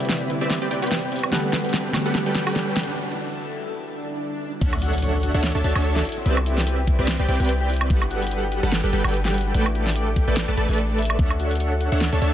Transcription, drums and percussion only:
0.00 closed hi-hat
0.05 closed hi-hat
0.09 snare, closed hi-hat
0.30 closed hi-hat
0.50 snare, closed hi-hat
0.71 closed hi-hat
0.82 closed hi-hat
0.87 closed hi-hat
0.91 snare, closed hi-hat
1.12 closed hi-hat
1.16 closed hi-hat
1.19 closed hi-hat
1.23 high woodblock
1.32 snare, closed hi-hat
1.53 snare, closed hi-hat
1.65 closed hi-hat
1.69 closed hi-hat
1.74 snare, closed hi-hat
1.94 snare, closed hi-hat, high woodblock
2.15 snare, closed hi-hat
2.35 snare, closed hi-hat
2.47 closed hi-hat, high woodblock
2.51 closed hi-hat
2.56 snare, closed hi-hat
2.77 snare, closed hi-hat
2.80 closed hi-hat
2.83 closed hi-hat
4.61 kick, closed hi-hat, crash
4.73 high woodblock
4.82 closed hi-hat
4.93 closed hi-hat
4.98 closed hi-hat
5.02 closed hi-hat
5.23 closed hi-hat
5.43 snare, closed hi-hat
5.64 closed hi-hat
5.75 closed hi-hat, high woodblock
5.80 closed hi-hat
5.85 closed hi-hat
5.96 snare
6.05 closed hi-hat
6.09 closed hi-hat
6.12 closed hi-hat
6.26 closed hi-hat
6.37 high woodblock
6.46 closed hi-hat
6.58 snare, closed hi-hat
6.62 closed hi-hat
6.67 closed hi-hat
6.87 kick, closed hi-hat
7.08 snare, closed hi-hat
7.29 closed hi-hat
7.40 closed hi-hat
7.44 closed hi-hat
7.49 closed hi-hat
7.70 closed hi-hat
7.73 closed hi-hat
7.76 closed hi-hat
7.81 high woodblock
7.90 kick, closed hi-hat
8.02 high woodblock
8.11 closed hi-hat
8.22 closed hi-hat
8.27 closed hi-hat
8.31 closed hi-hat
8.52 closed hi-hat
8.72 snare, closed hi-hat
8.93 closed hi-hat
9.04 closed hi-hat, high woodblock
9.09 closed hi-hat
9.14 closed hi-hat
9.25 snare
9.34 closed hi-hat
9.38 closed hi-hat
9.41 closed hi-hat
9.54 closed hi-hat
9.66 high woodblock
9.75 closed hi-hat
9.87 snare, closed hi-hat
9.91 closed hi-hat
9.96 closed hi-hat
10.16 kick, closed hi-hat
10.37 snare, closed hi-hat
10.57 closed hi-hat
10.69 closed hi-hat
10.73 closed hi-hat
10.78 closed hi-hat
10.98 closed hi-hat
11.02 closed hi-hat
11.05 closed hi-hat
11.10 high woodblock
11.19 kick, closed hi-hat
11.30 high woodblock
11.40 closed hi-hat
11.51 closed hi-hat
11.55 closed hi-hat
11.60 closed hi-hat
11.81 closed hi-hat
12.01 snare, closed hi-hat
12.22 closed hi-hat

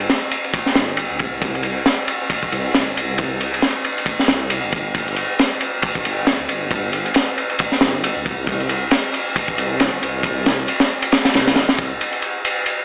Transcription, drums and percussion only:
0.00 ride
0.10 snare, ride
0.31 ride
0.44 ride
0.54 kick, ride
0.66 snare
0.75 snare, ride
0.97 ride
1.19 kick, ride
1.42 kick, ride
1.55 ride
1.63 ride
1.86 snare, ride
2.08 ride
2.30 kick, ride
2.43 kick
2.52 ride
2.74 snare, ride
2.97 ride
3.18 kick, ride
3.41 ride
3.54 ride
3.62 snare, ride
3.84 ride
3.98 ride
4.06 kick, ride
4.19 snare
4.28 snare, ride
4.50 ride
4.72 kick, ride
4.95 kick, ride
5.08 ride
5.16 ride
5.39 snare, ride
5.61 ride
5.82 kick, ride
5.95 kick
6.05 ride
6.27 snare, ride
6.49 ride
6.71 kick, ride
6.93 ride
7.06 ride
7.14 snare, ride
7.38 ride
7.50 ride
7.59 kick, ride
7.72 snare
7.81 snare, ride
8.04 ride
8.26 kick, ride
8.47 kick, ride
8.60 ride
8.69 ride
8.91 snare, ride
9.14 ride
9.36 kick, ride
9.48 kick
9.58 ride
9.80 snare, ride
10.03 ride
10.23 kick, ride
10.46 snare, ride
10.68 ride
10.80 snare, ride
11.02 ride
11.12 snare, ride
11.25 snare, ride
11.34 snare, ride
11.47 snare, ride
11.56 snare, ride
11.69 snare, ride
11.78 kick, ride
12.01 ride
12.13 ride
12.22 ride
12.45 ride
12.66 ride

